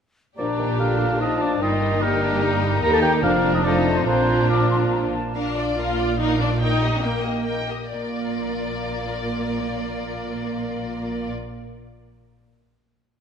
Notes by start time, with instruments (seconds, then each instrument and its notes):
0.37 double bass section A#1, cello section A#2, bassoon F3, violin section A#3 D4, french horn section D4, clarinet D4, viola section G4, oboe D5, flute A#5
0.49 violin section A#3
0.59 bassoon D#3, violin section A#3
0.69 violin section A#3
0.79 bassoon D3, violin section A#3, french horn section F4, oboe F5
0.89 violin section A#3
1.00 violin section A#3
1.10 violin section A#3
1.19 bassoon F3, violin section A#3, french horn section D#4, viola section F4, oboe D#5, flute A5
1.31 violin section A#3
1.41 violin section A#3, french horn section D4, oboe D5
1.52 violin section A#3
1.61 double bass section G1, cello section G2, bassoon D#3, violin section G3 D#4, viola section D#4, french horn section D#4, clarinet F4, oboe D#5, flute G5
1.71 violin section A#3
1.81 violin section G3
1.91 violin section A#3
2.02 bassoon G3, violin section G3, french horn section A#3, clarinet D#4, viola section G4, oboe A#4, flute G5
2.13 violin section A#3
2.23 violin section G3, clarinet D4
2.33 violin section A#3
2.42 bassoon G3, violin section G3, clarinet D#4, flute A#5
2.52 violin section A#3
2.64 violin section G3
2.73 violin section A#3
2.82 double bass section D#2, cello section D#2, bassoon D#3, violin section G3 A#3, clarinet D#4, viola section G4, french horn section A#4, flute A#5, oboe A#5
2.91 violin section A#3, french horn section A4, oboe A5
3.01 violin section G3, french horn section G4, oboe G5
3.14 violin section A#3
3.22 double bass section F1, cello section F2, bassoon F3, violin section A#3 D4, viola section D4, clarinet D4, french horn section F4, oboe F5, flute A#5
3.34 violin section A#3
3.44 violin section A#3
3.53 violin section A#3, french horn section D#4, oboe D#5
3.64 bassoon F3, violin section A3 D#4, french horn section D4, clarinet D#4, viola section F4, oboe D5, flute A5
3.75 violin section C4
3.86 violin section A3
3.96 french horn section C4, violin section C4, oboe C5
4.06 double bass section A#1, cello section A#2, bassoon F3, violin section A#3 D4, french horn section C4, clarinet D4, viola section F4, oboe C5, flute A#5
4.17 violin section A#3
4.28 violin section A#3
4.39 violin section A#3
4.49 bassoon F3, french horn section A#3, violin section A#3, clarinet D4, oboe A#4, flute D6
4.61 violin section A#3
4.71 violin section A#3, flute C6
4.81 violin section A#3
4.91 violin section A#3, flute A#5
5.03 violin section A#3
5.13 violin section A#3, flute A5
5.25 violin section A#3
5.35 double bass section A#1, cello section A#2, violin section D4 A#4 F5, viola section D4
5.56 violin section F4 D5
5.77 violin section D4 A#4 F5, viola section F4
5.98 violin section F4 D5
6.18 violin section D4 A#4 F5, viola section D#4
6.40 viola section D4, violin section F4 D5
6.60 viola section D#4, violin section D#4 A#4 G5
6.81 violin section G4 D#5
7.03 viola section A#3, violin section D#4 A#4 G5
7.24 violin section G4 D#5
7.46 violin section D#4 A#4 G5
7.69 violin section G4 D#5
7.91 double bass section A#1, cello section A#2, viola section A#3, violin section F4 A#4 D5